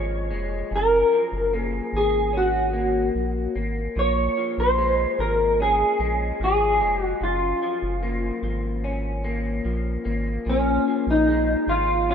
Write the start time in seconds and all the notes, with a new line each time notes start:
Already playing: G#1 A#2 F3 G#3 C#4 C#5
0.30 F1 G#3
0.71 F#1 F#2
0.76 A#4
1.13 F3
1.32 F#1
1.53 A#3
1.60 G#4
1.93 G#1 G#4
2.33 C#4
2.37 F#4
2.73 A#3
3.15 A#1
3.56 G#1 A#3
3.96 A#1 A#2 C#5
4.38 F3
4.58 A#1 C5
4.78 G#3
5.19 G#1 F3 A#4
5.60 C#4 G#4
5.99 A#1 G#3
6.40 G#1 F3 G#4
6.81 F1 G#3
7.03 F#4
7.21 F#1 F#2 F4
7.62 F3
7.82 F#1
8.03 A#3
8.42 G#1 F3
8.84 C#4
9.24 A#3
9.65 A#1 F3
10.05 G#1 A#3
10.46 A#1 A#2 C#4
10.88 F3
11.07 A#1 D#4
11.28 G#3
11.67 G#1 F3 F4
12.09 C#4 F4